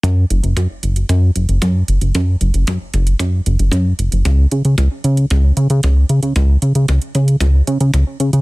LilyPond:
<<
  \new Staff \with { instrumentName = "Analog synth bass" } { \clef bass \time 4/4 \key cis \phrygian \tempo 4 = 114 fis,8 fis,,16 fis,,16 fis,16 r16 fis,,8 fis,8 fis,,16 fis,,16 fis,8 fis,,16 fis,,16 | fis,8 fis,,16 fis,,16 fis,16 r16 fis,,8 fis,8 fis,,16 fis,,16 fis,8 fis,,16 fis,,16 | cis,8 cis16 cis16 cis,16 r16 cis8 cis,8 cis16 cis16 cis,8 cis16 cis16 | cis,8 cis16 cis16 cis,16 r16 cis8 cis,8 cis16 cis16 cis,16 r16 cis16 cis16 | }
  \new DrumStaff \with { instrumentName = "Drums" } \drummode { \time 4/4 <hh bd>8 hh16 hh16 <hh bd>8 hh16 hh16 <hh bd>8 hh16 hh16 <hh bd>8 hh16 hh16 | <hh bd>8 hh16 hh16 <hh bd>8 <hh bd>16 hh16 <hh bd>8 hh16 hh16 <hh bd>8 hh16 hh16 | <hh bd>8 hh16 hh16 <hh bd>8 hh16 hh16 <hh bd>8 hh16 hh16 <hh bd>8 hh16 hh16 | <hh bd>8 hh16 hh16 <hh bd>16 hh16 <hh bd>16 hh16 <hh bd>8 hh16 hh16 <hh bd>8 hh16 hh16 | }
>>